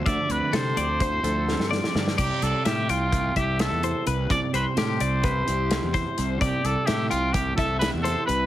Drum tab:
CC |------------------|x-----------------|------------------|------------------|
HH |x-x-x-x-x-x-------|x-x-x-x-x-x-x-x-x-|x-x-x-x-x-x-x-x-x-|x-x-x-x-x-x-x-x-x-|
SD |----o-------oooooo|----o-------o-----|----o-------o-o---|----o-----o-o-o---|
BD |o-------o---------|o-------o-o-------|o-------o-----o---|o-------o-o-------|